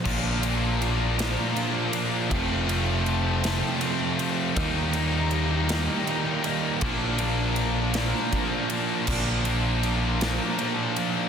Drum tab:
CC |x-----|------|------|------|
RD |-xxxxx|xxxxxx|xxxxxx|xxxxxx|
SD |---o--|---o--|---o--|---o--|
BD |o-----|o-----|o-----|o---o-|

CC |x-----|
RD |-xxxxx|
SD |---o--|
BD |o-----|